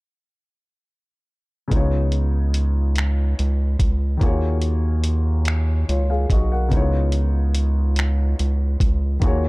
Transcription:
1.68 4.16 C#3 medium
1.68 4.17 B3 medium
1.68 kick medium
1.68 closed hi-hat soft
1.72 3.34 C#2 medium
1.72 4.18 D#4 medium
1.72 4.19 F4 medium
1.76 4.20 C#5 medium
2.12 closed hi-hat soft
2.54 closed hi-hat medium
2.96 finger snap medium
2.96 closed hi-hat medium
3.39 3.76 C#2 medium
3.39 closed hi-hat soft
3.80 4.18 C#2 medium
3.80 kick medium
3.80 closed hi-hat medium
4.17 6.65 D#3 medium
4.17 6.66 A#3 medium
4.17 5.84 F4 medium
4.17 kick medium
4.21 5.84 D#2 loud
4.21 5.85 F#4 medium
4.21 5.86 G#4 medium
4.21 closed hi-hat soft
4.26 5.87 C#5 medium
4.62 closed hi-hat soft
5.04 closed hi-hat medium
5.45 finger snap medium
5.45 closed hi-hat medium
5.89 6.26 C#2 medium
5.89 6.09 F4 soft
5.89 6.08 C#5 medium
5.89 closed hi-hat soft
6.10 6.30 G#4 soft
6.10 6.29 F5 medium
6.30 6.74 B1 medium
6.30 6.51 F#4 soft
6.30 6.51 D#5 soft
6.30 kick medium
6.30 closed hi-hat medium
6.52 6.91 A#4 soft
6.52 6.91 F#5 soft
6.69 8.35 C#2 loud
6.69 9.16 C#3 medium
6.69 9.17 B3 medium
6.69 9.18 D#4 medium
6.69 kick medium
6.69 closed hi-hat soft
6.74 6.79 E4 medium
6.74 9.20 C#5 medium
6.81 9.21 F4 medium
7.12 closed hi-hat soft
7.55 closed hi-hat medium
7.96 finger snap medium
7.96 closed hi-hat medium
8.39 8.77 C#2 medium
8.39 closed hi-hat soft
8.80 9.18 C#2 medium
8.80 kick medium
8.80 closed hi-hat medium
9.20 9.49 D#2 medium
9.20 9.49 D#3 medium
9.20 9.49 A#3 medium
9.20 9.49 F4 medium
9.20 kick medium
9.20 closed hi-hat soft
9.24 9.49 F#4 medium
9.24 9.49 G#4 medium
9.24 9.49 C#5 medium

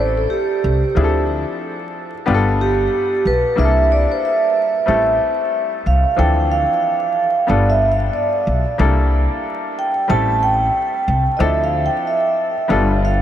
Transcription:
0.00 0.24 A1 loud
0.00 0.78 G3 medium
0.00 0.78 A3 medium
0.00 0.79 C4 medium
0.00 0.79 E4 medium
0.00 0.79 A4 medium
0.00 0.18 C5 medium
0.17 0.30 A4 medium
0.30 1.24 G4 medium
0.64 0.81 C2 medium
0.95 1.43 D2 loud
0.95 2.09 F3 medium
0.95 2.09 C4 medium
0.95 2.09 D4 medium
0.95 2.10 E4 medium
0.95 1.04 G#4 medium
1.04 2.13 A4 medium
2.26 2.85 G1 loud
2.26 3.39 G3 medium
2.26 3.39 B3 medium
2.26 3.40 D4 medium
2.26 3.40 F4 medium
2.26 2.35 G4 medium
2.34 3.43 A4 medium
2.61 3.27 G4 medium
3.25 3.42 B1 medium
3.25 3.59 B4 loud
3.56 4.04 C2 medium
3.56 4.69 G3 medium
3.56 4.70 A#3 medium
3.56 4.70 D4 medium
3.56 4.70 E4 medium
3.56 3.65 G#4 medium
3.56 3.89 E5 loud
3.65 4.74 A4 medium
3.92 4.11 D5 loud
4.12 4.23 C5 medium
4.25 5.17 E5 loud
4.86 5.17 A1 medium
4.86 6.00 G3 medium
4.86 6.00 A3 medium
4.86 6.00 C4 medium
4.86 6.01 E4 medium
4.86 6.01 A4 medium
5.86 6.03 C2 medium
5.86 6.16 F5 loud
6.16 6.65 D2 loud
6.16 7.31 E3 medium
6.16 7.30 F3 medium
6.16 7.30 C4 medium
6.16 7.31 D4 medium
6.16 7.31 A4 medium
6.16 6.52 G5 loud
6.52 7.52 F5 loud
7.47 8.07 G1 loud
7.47 8.61 G3 medium
7.47 8.61 B3 medium
7.47 8.61 D4 medium
7.47 8.62 F4 medium
7.47 8.62 A4 medium
7.47 7.71 D5 medium
7.70 7.90 E5 medium
7.92 8.01 F5 medium
8.13 8.75 D5 medium
8.47 8.64 B1 medium
8.78 9.25 C2 loud
8.78 9.91 G3 medium
8.78 9.92 A#3 medium
8.78 9.92 D4 medium
8.78 9.92 E4 medium
8.78 9.93 A4 medium
9.79 10.11 G5 medium
10.08 10.67 A1 loud
10.08 11.21 G3 medium
10.08 11.22 A3 medium
10.08 11.22 C4 medium
10.08 11.22 E4 medium
10.08 11.23 A4 medium
10.08 10.43 A5 loud
10.43 11.39 G5 loud
11.08 11.25 C2 medium
11.37 11.86 D2 loud
11.37 12.52 F3 medium
11.37 12.52 C4 medium
11.37 12.53 D4 medium
11.37 12.53 E4 medium
11.37 11.40 D#5 medium
11.41 12.53 A4 medium
11.41 11.61 E5 loud
11.64 11.85 F5 medium
11.86 12.05 G5 loud
12.07 12.67 E5 medium
12.68 13.22 G1 loud
12.68 13.22 G3 medium
12.68 13.22 B3 medium
12.68 13.22 D4 medium
12.68 13.22 F4 medium
12.68 13.22 A4 medium
13.05 13.22 F5 medium

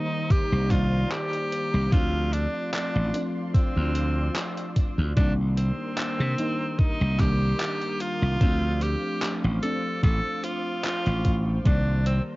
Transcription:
0.00 0.69 D#3 medium
0.00 1.89 D#3 medium
0.00 0.70 G3 medium
0.00 0.71 A#3 medium
0.00 0.32 D#4 loud
0.00 0.67 D#4 medium
0.00 1.89 C5 medium
0.00 1.94 D5 loud
0.00 1.89 A#5 medium
0.30 0.72 G4 loud
0.30 muted slap bass stroke soft
0.30 kick loud
0.30 closed hi-hat medium
0.52 1.04 C2 medium
0.69 1.87 D#3 loud
0.69 1.88 G3 medium
0.69 1.88 A#3 medium
0.69 1.89 D4 loud
0.69 1.13 F4 loud
0.69 kick medium
0.69 clap soft
0.69 closed hi-hat medium
1.11 1.94 G4 loud
1.11 clap loud
1.11 closed hi-hat medium
1.33 closed hi-hat soft
1.52 closed hi-hat medium
1.74 1.88 C2 medium
1.91 2.46 D2 loud
1.91 3.09 F3 loud
1.91 3.09 A3 medium
1.91 3.10 C4 medium
1.91 3.10 D4 loud
1.91 2.34 F4 loud
1.91 5.14 F4 medium
1.91 5.14 D5 medium
1.91 5.14 C6 loud
1.91 kick loud
1.91 closed hi-hat medium
2.33 2.73 D4 loud
2.33 closed hi-hat medium
2.73 3.25 D4 loud
2.73 clap loud
2.73 closed hi-hat medium
2.95 3.09 A1 medium
3.13 5.12 F3 medium
3.13 5.12 A3 medium
3.13 5.13 C4 medium
3.13 5.13 D4 medium
3.13 closed hi-hat medium
3.54 4.72 C4 medium
3.54 kick loud
3.54 closed hi-hat medium
3.76 4.28 D2 medium
3.95 closed hi-hat medium
4.36 clap loud
4.36 closed hi-hat medium
4.57 closed hi-hat soft
4.76 kick medium
4.76 closed hi-hat medium
4.98 5.12 D2 medium
5.15 5.70 C2 loud
5.15 6.33 D#3 loud
5.15 6.33 G3 medium
5.15 6.34 A#3 medium
5.15 5.33 D4 loud
5.15 6.34 D4 loud
5.15 8.38 A#4 medium
5.15 8.38 C6 loud
5.15 8.38 D#6 medium
5.15 kick loud
5.15 closed hi-hat medium
5.57 6.80 C4 loud
5.57 closed hi-hat medium
5.98 clap loud
5.98 closed hi-hat medium
6.20 6.34 C3 medium
6.38 7.15 D#3 medium
6.38 7.15 G3 medium
6.38 7.15 A#3 medium
6.38 7.15 D#4 loud
6.38 closed hi-hat medium
6.79 7.21 D#4 loud
6.79 muted slap bass stroke soft
6.79 kick loud
6.79 closed hi-hat medium
7.01 7.52 C2 medium
7.18 8.36 D#3 loud
7.18 8.37 G3 medium
7.18 8.37 A#3 medium
7.18 8.38 D4 loud
7.18 8.02 G4 loud
7.18 kick medium
7.18 clap soft
7.18 closed hi-hat medium
7.60 clap loud
7.60 closed hi-hat medium
7.82 closed hi-hat soft
8.00 8.83 F4 loud
8.00 closed hi-hat medium
8.22 8.36 C2 medium
8.40 8.94 D2 loud
8.40 9.57 F3 loud
8.40 9.58 A3 medium
8.40 9.59 C4 medium
8.40 9.59 D4 loud
8.40 12.36 C5 medium
8.40 11.62 F5 medium
8.40 11.62 D6 medium
8.40 kick loud
8.40 closed hi-hat medium
8.81 9.37 G4 loud
8.81 closed hi-hat medium
9.22 clap loud
9.22 closed hi-hat medium
9.44 9.58 A1 medium
9.61 11.60 F3 medium
9.61 11.61 A3 medium
9.61 11.61 C4 medium
9.61 11.62 D4 medium
9.61 10.00 A4 loud
9.61 closed hi-hat medium
10.03 10.19 A1 loud
10.03 10.45 A4 loud
10.03 kick loud
10.03 closed hi-hat medium
10.44 10.84 F4 loud
10.44 closed hi-hat medium
10.84 11.43 F4 loud
10.84 clap loud
10.84 closed hi-hat medium
11.06 11.58 A1 medium
11.06 closed hi-hat soft
11.25 kick medium
11.25 closed hi-hat medium
11.64 12.19 C2 loud
11.64 12.36 D#3 medium
11.64 12.36 G3 medium
11.64 12.36 A#3 medium
11.64 12.03 D4 loud
11.64 12.36 D5 loud
11.64 12.36 A#5 medium
11.64 kick loud
11.64 closed hi-hat medium
12.06 12.23 C4 medium
12.06 closed hi-hat medium

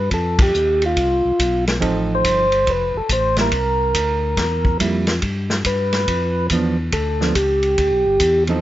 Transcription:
0.00 0.10 G2 medium
0.11 0.53 F2 medium
0.11 0.41 A4 medium
0.11 kick soft
0.11 ride medium
0.39 0.84 G4 loud
0.39 kick medium
0.39 ride medium
0.54 0.96 D#2 medium
0.54 hi-hat pedal medium
0.82 1.65 F4 medium
0.82 ride soft
0.97 1.22 C2 medium
0.97 kick soft
0.97 ride medium
1.25 1.32 C2 soft
1.39 1.81 B1 medium
1.39 kick soft
1.39 hi-hat pedal medium
1.39 ride medium
1.67 snare medium
1.67 ride soft
1.80 2.23 A1 medium
1.80 2.46 F3 medium
1.80 2.46 C4 medium
1.80 2.46 D#4 medium
1.80 2.46 A4 medium
1.80 kick soft
1.80 ride medium
2.15 2.71 C5 loud
2.24 2.66 G1 medium
2.24 kick soft
2.24 hi-hat pedal medium
2.24 ride medium
2.52 ride soft
2.67 2.93 F1 medium
2.67 2.97 B4 medium
2.67 kick soft
2.67 ride medium
2.94 3.02 F1 soft
2.94 3.11 A4 medium
3.09 3.50 A1 medium
3.09 3.37 C5 medium
3.09 kick soft
3.09 hi-hat pedal medium
3.09 ride medium
3.37 3.51 G3 soft
3.37 3.51 A#3 medium
3.37 3.51 E4 medium
3.37 snare soft
3.37 ride soft
3.41 4.78 A#4 medium
3.52 3.93 C2 medium
3.52 kick soft
3.52 ride medium
3.94 4.36 D2 medium
3.94 kick soft
3.94 hi-hat pedal medium
3.94 ride medium
4.37 4.78 E2 medium
4.37 kick soft
4.37 snare soft
4.37 ride medium
4.65 kick soft
4.79 5.21 F2 medium
4.79 5.05 G3 medium
4.79 5.05 A#3 medium
4.79 5.05 E4 medium
4.79 kick soft
4.79 hi-hat pedal medium
4.79 ride medium
5.07 snare medium
5.07 ride soft
5.22 5.63 G2 medium
5.22 kick soft
5.22 ride medium
5.50 snare medium
5.65 6.06 G2 medium
5.65 6.47 B4 medium
5.65 kick soft
5.65 hi-hat pedal medium
5.65 ride medium
5.93 snare soft
5.93 ride soft
6.07 6.49 F2 medium
6.07 kick soft
6.07 ride medium
6.50 6.91 E2 medium
6.50 6.76 F3 medium
6.50 6.76 B3 medium
6.50 6.77 D4 medium
6.50 kick soft
6.50 hi-hat pedal medium
6.50 ride medium
6.92 7.34 D2 medium
6.92 7.37 A4 medium
6.92 kick soft
6.92 ride medium
7.21 7.34 F3 medium
7.21 7.34 B3 medium
7.21 7.35 D4 medium
7.21 snare soft
7.35 7.76 C#2 medium
7.35 8.44 G4 medium
7.35 kick soft
7.35 hi-hat pedal medium
7.35 ride medium
7.63 ride soft
7.78 7.91 D2 medium
7.78 kick soft
7.78 ride medium
7.92 8.06 B1 medium
8.06 8.19 G1 medium
8.20 8.61 E2 medium
8.20 kick soft
8.20 hi-hat pedal medium
8.20 ride medium
8.47 8.61 F3 medium
8.47 8.61 C4 medium
8.47 8.61 D#4 medium
8.47 8.61 A4 medium
8.47 ride soft

